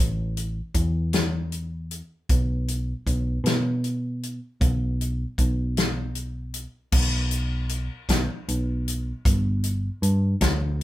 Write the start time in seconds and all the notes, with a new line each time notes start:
Already playing: A1
0.37 closed hi-hat
0.74 E2, kick, closed hi-hat
1.13 snare, closed hi-hat
1.52 closed hi-hat
1.91 closed hi-hat
2.29 B1, kick, closed hi-hat
2.68 closed hi-hat
3.06 B1, kick, closed hi-hat
3.44 B2, snare, closed hi-hat
3.84 closed hi-hat
4.23 closed hi-hat
4.61 B1, kick, closed hi-hat
5.01 closed hi-hat
5.38 B1, kick, closed hi-hat
5.77 snare, closed hi-hat
6.15 closed hi-hat
6.54 closed hi-hat
6.92 B1, kick, crash
7.31 closed hi-hat
7.69 closed hi-hat
8.09 B1, kick, snare, closed hi-hat
8.48 B1, closed hi-hat
8.88 closed hi-hat
9.25 G1, kick, closed hi-hat
9.64 closed hi-hat
10.02 G2, closed hi-hat
10.41 D2, kick, snare, closed hi-hat